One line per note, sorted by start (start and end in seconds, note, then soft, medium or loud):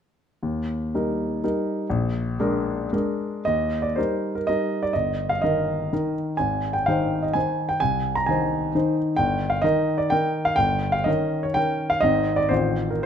0.43 0.92 D#2 soft
0.95 1.39 G3 soft
0.95 1.40 D#4 soft
0.95 1.40 A#4 soft
1.44 1.86 G3 soft
1.44 1.86 D#4 soft
1.44 1.86 A#4 soft
1.90 2.38 A#1 medium
2.40 2.89 G#3 medium
2.40 2.89 D4 medium
2.40 2.89 A#4 medium
2.93 3.43 G#3 medium
2.93 3.43 D4 soft
2.93 3.43 A#4 soft
3.45 3.96 D#2 medium
3.45 3.83 D#5 medium
3.82 3.96 D5 medium
3.96 4.45 G3 soft
3.96 4.45 D#4 soft
3.96 4.34 A#4 medium
3.96 4.35 C5 medium
4.35 4.48 A#4 soft
4.47 4.91 G3 soft
4.47 4.92 D#4 soft
4.47 4.92 A#4 soft
4.47 4.83 D#5 medium
4.83 4.95 D5 medium
4.93 5.41 G1 soft
4.93 5.29 D#5 medium
5.29 5.42 F5 medium
5.42 5.88 D#3 soft
5.42 5.88 D#4 soft
5.42 5.89 A#4 soft
5.42 6.14 D#5 medium
5.93 6.35 D#3 soft
5.93 6.35 D#4 soft
5.93 6.35 A#4 soft
6.37 6.86 G#1 medium
6.37 6.74 G#5 medium
6.73 6.87 G5 medium
6.86 7.32 D#3 soft
6.86 7.32 D#4 soft
6.86 7.32 C5 medium
6.86 7.23 F5 medium
7.22 7.35 D#5 soft
7.33 7.77 D#3 soft
7.33 7.77 D#4 soft
7.33 7.77 C5 soft
7.33 7.69 G#5 medium
7.69 7.81 G5 medium
7.80 8.27 C2 soft
7.80 8.16 G#5 medium
8.15 8.28 A#5 medium
8.26 8.71 D#3 soft
8.26 8.71 D#4 soft
8.26 8.72 C5 soft
8.26 8.96 G#5 medium
8.75 9.14 D#3 soft
8.75 9.15 D#4 soft
8.75 9.15 C5 soft
9.16 9.63 G1 medium
9.16 9.51 G5 medium
9.50 9.63 F5 medium
9.62 10.08 D#3 medium
9.62 10.08 D#4 soft
9.62 10.08 A#4 soft
9.62 9.99 D#5 medium
9.98 10.11 D5 medium
10.10 10.54 D#3 soft
10.10 10.55 D#4 soft
10.10 10.54 A#4 medium
10.10 10.46 G5 medium
10.45 10.57 F5 medium
10.56 11.06 G1 medium
10.56 10.93 G5 medium
10.92 11.06 F5 medium
11.04 11.52 D#3 medium
11.04 11.53 C#4 medium
11.04 11.53 A#4 medium
11.04 11.43 D#5 medium
11.43 11.56 C#5 medium
11.54 11.99 D#3 soft
11.54 11.99 C#4 soft
11.54 11.99 A#4 medium
11.54 11.90 G5 medium
11.90 12.02 F5 medium
12.01 12.50 G#1 medium
12.01 12.47 D#3 soft
12.01 12.48 C4 soft
12.01 12.48 D#4 soft
12.01 12.37 D#5 medium
12.36 12.50 D5 medium
12.49 13.04 A1 medium
12.49 13.01 D#3 soft
12.49 13.01 C4 soft
12.49 13.02 F4 soft
12.49 12.91 C5 medium
12.91 13.05 A#4 soft